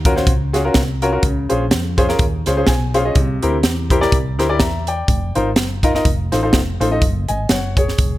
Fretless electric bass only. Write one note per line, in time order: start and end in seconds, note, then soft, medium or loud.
0.00 0.28 D#2 medium
0.27 0.68 C#2 medium
0.75 1.16 C2 medium
1.23 1.46 C#2 loud
1.51 1.73 A#1 medium
1.71 2.12 F2 medium
2.19 2.42 D#2 medium
2.47 2.65 C#2 medium
2.68 3.09 B1 medium
3.16 3.39 C2 loud
3.43 3.61 D2 loud
3.64 4.05 E2 medium
4.12 4.40 C2 medium
4.40 4.61 D2 medium
4.61 5.01 E2 loud
5.09 5.32 F1 loud
5.36 5.57 G#1 medium
5.57 5.98 F#1 medium
6.05 6.28 F1 loud
6.32 6.50 A1 medium
6.54 6.77 F1 medium
6.80 6.98 A1 medium
7.02 7.25 F#1 loud
7.29 7.47 G#1 medium
7.50 7.91 F#1 medium
7.98 8.18 F1 medium